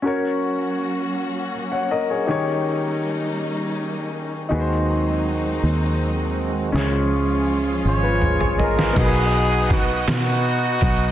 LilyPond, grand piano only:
<<
  \new Staff \with { instrumentName = "Grand piano" } { \time 6/8 \key fis \major \tempo 4. = 54 << { r2 r16 <cis'' fis''>16 <ais' dis''>16 <gis' cis''>16~ | <gis' cis''>16 r2 r8. | r2. | r4. r16 <eis' b'>8 <gis' cis''>16 <ais' dis''>16 <b' eis''>16~ |
<b' eis''>16 r2 r8. | } \\ { <cis' fis' ais' cis''>2. | <dis' g' ais' cis''>2. | <dis' fis' gis' b' bis'>2. | <cis' e' eis' gis' cis''>2. |
<b dis' fis' ais' b'>2. | } >> }
  \new Staff \with { instrumentName = "Grand piano" } { \clef bass \time 6/8 \key fis \major r2. | dis4. r4. | dis4. r4. | cis4. r4. |
b,4. r4. | }
>>